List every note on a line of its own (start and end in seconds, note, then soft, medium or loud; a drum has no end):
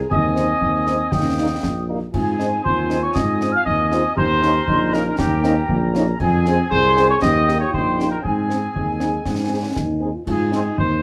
0.10 0.53 D#2 medium
0.10 1.08 C4 medium
0.10 1.84 C4 medium
0.10 1.85 D#5 medium
0.10 1.08 G#5 medium
0.10 1.85 D#6 medium
0.10 concert bass drum medium
0.35 0.45 G#3 medium
0.35 0.45 C4 medium
0.35 0.45 D#4 soft
0.35 snare soft
0.61 1.04 D#2 medium
0.61 concert bass drum medium
0.86 0.96 G#3 soft
0.86 0.96 C4 medium
0.86 0.96 D#4 medium
0.86 snare soft
1.11 1.55 D#2 medium
1.11 1.88 A#3 soft
1.11 1.88 G5 medium
1.11 concert bass drum medium
1.11 snare medium
1.38 1.47 G3 soft
1.38 1.47 A#3 soft
1.38 1.47 D#4 soft
1.63 2.06 A#1 medium
1.63 concert bass drum medium
1.63 snare medium
1.88 1.97 G3 soft
1.88 1.97 A#3 medium
1.88 1.97 D#4 soft
2.13 2.56 G#2 medium
2.13 4.13 C4 medium
2.13 2.41 F4 medium
2.13 2.61 G#4 medium
2.13 4.13 G#5 medium
2.13 2.61 G#5 medium
2.13 concert bass drum medium
2.13 crash soft
2.39 2.48 G#3 soft
2.39 2.48 C4 soft
2.39 2.48 D#4 soft
2.39 2.64 D#4 medium
2.39 snare soft
2.63 3.07 D#2 medium
2.63 3.62 F4 medium
2.63 2.99 C5 medium
2.63 3.00 C6 medium
2.63 concert bass drum medium
2.89 2.99 G#3 medium
2.89 2.99 C4 soft
2.89 2.98 D#4 soft
2.89 snare medium
3.02 3.15 C#5 medium
3.02 3.14 C#6 medium
3.14 3.58 G#2 medium
3.14 3.53 D#5 medium
3.14 3.54 D#6 medium
3.14 concert bass drum medium
3.14 snare medium
3.41 3.50 G#3 medium
3.41 3.50 C4 soft
3.41 3.51 D#4 soft
3.41 snare soft
3.52 3.59 F5 medium
3.52 3.65 F6 medium
3.65 4.05 D#2 medium
3.65 3.77 D#4 medium
3.65 4.13 D#5 medium
3.65 4.13 D#6 medium
3.65 concert bass drum medium
3.91 4.01 G#3 medium
3.91 4.00 C4 medium
3.91 4.01 D#4 medium
3.91 4.03 F4 medium
3.91 snare medium
4.16 4.59 D#2 medium
4.16 6.16 C#4 medium
4.16 4.64 G4 medium
4.16 4.89 C5 loud
4.16 6.16 A#5 medium
4.16 4.95 C6 medium
4.16 concert bass drum medium
4.42 4.51 A#3 medium
4.42 4.51 C#4 medium
4.42 4.51 D#4 medium
4.42 snare soft
4.67 5.10 A#1 medium
4.67 5.19 D#4 medium
4.67 concert bass drum medium
4.92 5.02 A#3 medium
4.92 5.02 C#4 medium
4.92 5.02 D#4 medium
4.92 5.18 A#4 medium
4.92 5.18 A#5 medium
4.92 snare medium
5.18 5.61 D#2 medium
5.18 5.42 A#3 medium
5.18 5.91 G4 medium
5.18 5.91 G5 medium
5.18 concert bass drum medium
5.18 snare medium
5.43 5.53 A#3 medium
5.43 5.55 C4 medium
5.43 5.53 C#4 medium
5.43 5.53 D#4 medium
5.43 snare medium
5.68 6.12 A#1 medium
5.68 5.80 A#3 medium
5.68 concert bass drum medium
5.94 6.04 A#3 medium
5.94 6.05 C#4 medium
5.94 6.04 C#4 medium
5.94 6.04 D#4 medium
5.94 snare medium
6.19 6.63 F2 medium
6.19 7.18 C4 medium
6.19 6.67 C4 medium
6.19 6.67 G#4 medium
6.19 7.17 G#5 medium
6.19 6.68 G#5 medium
6.19 concert bass drum medium
6.19 crash soft
6.46 6.55 G#3 medium
6.46 6.55 C4 medium
6.46 6.55 G#4 medium
6.46 snare medium
6.70 7.14 C2 medium
6.70 7.18 G#4 medium
6.70 7.06 C5 loud
6.70 7.07 C6 medium
6.70 concert bass drum medium
6.96 7.06 G#3 medium
6.96 7.05 C4 medium
6.96 7.05 G#4 medium
6.96 snare medium
7.08 7.21 C#5 medium
7.08 7.15 C#6 medium
7.21 7.65 D#2 medium
7.21 8.23 A#3 medium
7.21 7.74 G4 medium
7.21 7.57 D#5 loud
7.21 8.23 G5 medium
7.21 7.58 D#6 medium
7.21 concert bass drum medium
7.21 snare medium
7.47 7.57 A#3 medium
7.47 7.57 D#4 medium
7.47 7.57 G4 medium
7.47 snare soft
7.60 7.72 C#5 medium
7.60 7.67 C#6 medium
7.72 8.15 A#1 medium
7.72 8.24 D#4 medium
7.72 8.08 C5 medium
7.72 8.09 C6 medium
7.72 concert bass drum medium
7.99 8.08 A#3 soft
7.99 8.08 D#4 soft
7.99 8.08 G4 soft
7.99 snare medium
8.10 8.22 A#4 medium
8.10 8.18 A#5 medium
8.22 8.66 G#2 medium
8.22 8.69 C4 medium
8.22 9.97 C4 medium
8.22 9.71 G#4 medium
8.22 10.01 G#5 medium
8.22 concert bass drum medium
8.26 9.74 G#5 medium
8.49 8.58 C4 soft
8.49 8.58 D#4 soft
8.49 8.58 G#4 soft
8.49 snare soft
8.75 9.17 D#2 soft
8.75 9.26 G#3 medium
8.75 concert bass drum medium
8.99 9.09 C4 soft
8.99 9.09 D#4 soft
8.99 9.09 G#4 soft
8.99 snare soft
9.25 9.68 G#2 medium
9.25 9.65 C4 medium
9.25 concert bass drum medium
9.25 snare medium
9.49 9.59 C4 soft
9.49 9.59 D#4 soft
9.49 9.59 G#4 soft
9.63 9.75 C#4 soft
9.76 10.14 D#2 medium
9.76 10.16 D#4 medium
9.76 concert bass drum medium
9.76 snare medium
10.00 10.10 C4 soft
10.00 10.10 D#4 soft
10.00 10.10 G#4 soft
10.15 10.26 F4 soft
10.26 10.69 G#2 medium
10.26 10.53 F4 medium
10.26 10.74 G#4 medium
10.26 concert bass drum medium
10.26 crash soft
10.51 10.62 G#3 medium
10.51 10.61 C4 soft
10.51 10.61 C4 medium
10.51 10.62 C4 medium
10.51 10.61 D#4 medium
10.51 11.02 D#4 medium
10.51 10.62 G#5 medium
10.51 snare soft
10.77 11.02 D#2 medium
10.77 11.02 C5 medium
10.77 concert bass drum medium